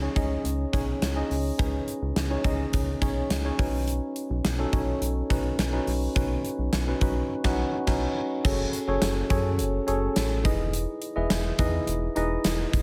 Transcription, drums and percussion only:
0.16 kick medium
0.16 closed hi-hat medium
0.45 closed hi-hat medium
0.73 kick medium
0.73 closed hi-hat medium
1.02 snare loud
1.02 closed hi-hat medium
1.31 open hi-hat medium
1.59 kick loud
1.59 closed hi-hat medium
1.88 closed hi-hat medium
2.16 snare loud
2.16 closed hi-hat medium
2.44 kick medium
2.44 closed hi-hat medium
2.73 kick loud
2.73 closed hi-hat medium
3.02 kick medium
3.02 closed hi-hat medium
3.30 snare loud
3.30 closed hi-hat loud
3.59 kick loud
3.59 open hi-hat medium
3.88 closed hi-hat medium
4.16 closed hi-hat medium
4.45 snare loud
4.45 closed hi-hat medium
4.73 kick loud
4.73 closed hi-hat medium
5.02 closed hi-hat medium
5.30 kick medium
5.30 closed hi-hat medium
5.59 snare loud
5.59 closed hi-hat medium
5.87 open hi-hat medium
6.16 kick loud
6.16 closed hi-hat medium
6.45 closed hi-hat medium
6.73 snare loud
6.73 closed hi-hat medium
6.73 tambourine medium
7.01 kick loud
7.01 closed hi-hat medium
7.44 kick loud
7.44 snare loud
7.44 crash medium
7.87 kick loud
7.87 snare loud
7.87 crash medium
8.45 kick loud
8.45 crash loud
8.73 closed hi-hat medium
9.02 snare loud
9.02 closed hi-hat medium
9.02 tambourine medium
9.30 kick loud
9.30 closed hi-hat medium
9.59 closed hi-hat medium
9.88 closed hi-hat medium
10.16 snare loud
10.16 closed hi-hat loud
10.16 tambourine medium
10.45 kick loud
10.45 closed hi-hat medium
10.73 closed hi-hat medium
11.02 closed hi-hat medium
11.30 snare loud
11.30 closed hi-hat medium
11.30 tambourine medium
11.59 kick loud
11.59 closed hi-hat medium
11.87 closed hi-hat medium
12.16 closed hi-hat medium
12.44 snare loud
12.44 closed hi-hat loud
12.44 tambourine medium
12.73 kick loud
12.73 closed hi-hat medium

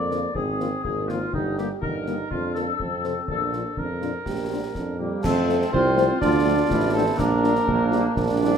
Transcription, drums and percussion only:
0.11 snare soft
0.35 concert bass drum medium
0.60 snare soft
0.85 concert bass drum medium
1.09 snare soft
1.33 concert bass drum medium
1.58 snare soft
1.82 concert bass drum medium
2.06 snare soft
2.31 concert bass drum medium
2.55 snare soft
2.80 concert bass drum medium
3.04 snare soft
3.28 concert bass drum medium
3.53 snare soft
3.77 concert bass drum medium
4.02 snare soft
4.26 concert bass drum medium
4.26 snare medium
4.75 concert bass drum medium
4.75 snare soft
5.24 concert bass drum medium
5.24 snare medium
5.24 crash medium
5.49 snare medium
5.61 snare medium
5.74 concert bass drum medium
5.98 snare medium
6.22 concert bass drum medium
6.22 snare medium
6.70 concert bass drum medium
6.70 snare medium
7.19 concert bass drum medium
7.19 snare medium
7.19 crash soft
7.44 snare medium
7.55 snare soft
7.68 concert bass drum medium
7.92 snare medium
8.16 concert bass drum medium
8.16 snare medium

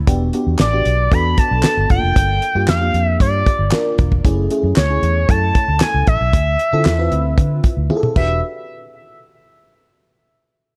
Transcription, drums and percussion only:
0.07 kick loud
0.07 closed hi-hat loud
0.33 closed hi-hat medium
0.59 snare loud
0.59 clap medium
0.59 closed hi-hat loud
0.85 closed hi-hat medium
1.12 kick loud
1.12 closed hi-hat medium
1.38 kick loud
1.38 closed hi-hat medium
1.63 snare loud
1.63 clap medium
1.63 closed hi-hat medium
1.90 kick loud
1.90 closed hi-hat medium
2.16 kick loud
2.16 closed hi-hat loud
2.42 closed hi-hat medium
2.68 snare loud
2.68 clap loud
2.68 closed hi-hat loud
2.94 closed hi-hat medium
3.20 kick loud
3.20 closed hi-hat medium
3.46 kick loud
3.46 closed hi-hat medium
3.72 snare loud
3.72 clap loud
3.72 closed hi-hat medium
3.98 kick loud
3.98 closed hi-hat medium
4.12 kick medium
4.25 kick loud
4.25 closed hi-hat loud
4.50 closed hi-hat medium
4.76 snare loud
4.76 clap medium
4.76 closed hi-hat loud
5.03 closed hi-hat medium
5.29 kick loud
5.29 closed hi-hat loud
5.55 kick loud
5.55 closed hi-hat medium
5.80 snare loud
5.80 clap loud
5.80 closed hi-hat loud
6.07 kick loud
6.07 closed hi-hat medium
6.33 kick loud
6.33 closed hi-hat loud
6.59 closed hi-hat medium
6.85 snare loud
6.85 clap medium
6.85 closed hi-hat medium
7.12 closed hi-hat medium
7.38 kick loud
7.38 closed hi-hat medium
7.64 kick loud
7.64 closed hi-hat medium
7.90 high tom medium
8.03 mid tom medium
8.16 kick loud
8.16 crash medium

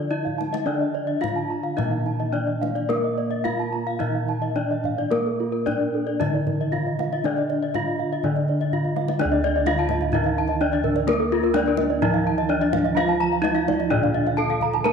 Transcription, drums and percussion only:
0.12 kendang slap soft
0.26 kendang low soft
0.41 kendang high soft
0.54 kendang high soft
1.24 kendang slap soft
1.24 kendang high soft
1.24 kendang low soft
1.78 kendang high soft
1.78 kendang low soft
2.06 kendang slap soft
2.34 kendang slap soft
2.63 kendang high soft
2.76 kendang slap soft
2.90 kendang high soft
3.45 kendang slap soft
3.45 kendang high soft
3.45 kendang low soft
4.00 kendang low soft
4.28 kendang slap soft
4.56 kendang slap soft
4.84 kendang low soft
4.99 kendang slap soft
5.11 kendang high soft
5.67 kendang slap soft
5.67 kendang high soft
5.67 kendang low soft
6.21 kendang high soft
6.21 kendang low soft
6.47 kendang slap soft
6.47 kendang low soft
6.73 kendang slap soft
6.73 kendang low soft
6.99 kendang high soft
7.13 kendang slap soft
7.24 kendang high soft
7.37 kendang slap soft
7.50 kendang slap soft
7.74 kendang slap soft
7.74 kendang high soft
7.74 kendang low soft
8.23 kendang slap soft
8.23 kendang low soft
8.36 kendang slap soft
8.48 kendang slap soft
8.61 kendang slap soft
8.72 kendang low soft
8.85 kendang low soft
8.96 kendang high soft
9.08 kendang high soft
9.19 kendang high soft
9.66 kendang high medium
9.78 kendang slap soft
9.89 kendang high soft
9.89 kendang low soft
10.01 kendang slap soft
10.12 kendang low medium
10.24 kendang slap soft
10.48 kendang slap soft
10.72 kendang slap soft
10.83 kendang low soft
10.96 kendang slap soft
11.08 kendang high soft
11.54 kendang high soft
11.66 kendang slap soft
11.77 kendang high soft
11.77 kendang low soft
11.90 kendang slap soft
12.02 kendang low medium
12.14 kendang slap soft
12.38 kendang slap soft
12.62 kendang slap soft
12.73 kendang high soft
12.73 kendang low soft
12.86 kendang slap soft
12.97 kendang high soft
13.44 kendang high soft
13.56 kendang slap soft
13.68 kendang high soft
13.68 kendang low soft
13.80 kendang slap soft
13.91 kendang low medium
14.04 kendang slap soft
14.27 kendang slap soft
14.50 kendang slap soft
14.61 kendang low soft
14.73 kendang slap soft
14.85 kendang high soft

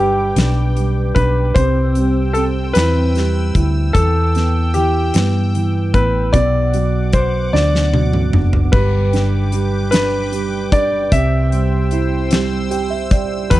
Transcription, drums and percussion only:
0.36 snare medium
0.36 closed hi-hat medium
0.77 closed hi-hat soft
1.16 kick medium
1.16 closed hi-hat soft
1.56 kick medium
1.56 closed hi-hat medium
1.95 closed hi-hat soft
2.35 closed hi-hat soft
2.75 snare medium
2.75 closed hi-hat medium
3.15 snare soft
3.15 closed hi-hat soft
3.55 kick medium
3.55 closed hi-hat soft
3.95 kick medium
3.95 closed hi-hat medium
4.35 snare soft
4.35 closed hi-hat soft
4.74 closed hi-hat soft
5.14 snare medium
5.14 closed hi-hat medium
5.55 closed hi-hat soft
5.94 kick medium
5.94 closed hi-hat soft
6.34 kick medium
6.34 closed hi-hat medium
6.74 closed hi-hat soft
7.13 kick medium
7.13 closed hi-hat soft
7.55 snare soft
7.75 snare soft
7.94 high tom medium
8.13 mid tom medium
8.33 mid tom medium
8.53 floor tom medium
8.73 kick loud
8.73 crash medium
9.13 snare soft
9.13 closed hi-hat soft
9.52 closed hi-hat soft
9.92 snare medium
9.92 closed hi-hat medium
10.33 closed hi-hat soft
10.72 kick medium
10.72 closed hi-hat soft
11.12 kick loud
11.12 closed hi-hat medium
11.52 closed hi-hat soft
11.91 closed hi-hat soft
12.31 snare medium
12.31 closed hi-hat medium
12.71 closed hi-hat soft
13.11 kick medium
13.11 closed hi-hat soft
13.51 kick medium
13.51 closed hi-hat medium

